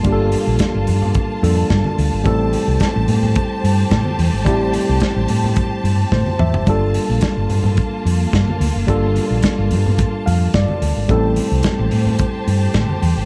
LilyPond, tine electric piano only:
\new Staff \with { instrumentName = "Tine electric piano" } { \time 4/4 \key g \dorian \tempo 4 = 109 << { r1 | r1 | r2. c''8 e''8 | r1 |
r2 r8 f''8 d''4 | r1 | } \\ { <g bes d' f' g' a'>2~ <g bes d' f' g' a'>8 <g bes d' f' a'>4. | <g a c' e' a'>1 | <g a c' e' g'>1 | <g bes d' f' a'>1 |
<g bes d' f' a'>1 | <g a c' e' a'>1 | } >> }